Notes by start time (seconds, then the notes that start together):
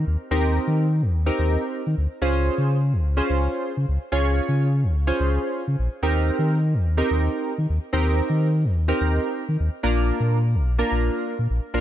0.07 D#2
0.31 D#2 C4 D#4 G4 A#4
0.67 D#3
1.02 D#2
1.26 C4 D#4 G4 A#4
1.39 D#2
1.87 D#3
1.98 D2
2.22 C#2 C#4 F4 G#4 C5
2.58 C#3
2.93 C#2
3.17 C#4 F4 G#4 C5
3.30 C#2
3.77 C#3
3.88 C#2
4.12 C#2 C#4 F4 G#4 C#5
4.49 C#3
4.84 C#2
5.07 C#4 F4 G#4 C5
5.20 C#2
5.68 C#3
5.79 A#1
6.02 D#2 C4 D#4 G4 A#4
6.39 D#3
6.74 D#2
6.97 C4 D#4 G4 A#4
7.11 D#2
7.58 D#3
7.70 D#2
7.93 D#2 C4 D#4 G4 A#4
8.30 D#3
8.65 D#2
8.88 C4 D#4 G4 A#4
9.01 D#2
9.49 D#3
9.60 D#2
9.83 A#1 A#3 D4 F4 A#4
10.20 A#2
10.55 A#1
10.78 A#3 D4 F4 A#4
10.91 A#1
11.39 A#2
11.50 A#1
11.74 A#1 A#3 D4 F4 A#4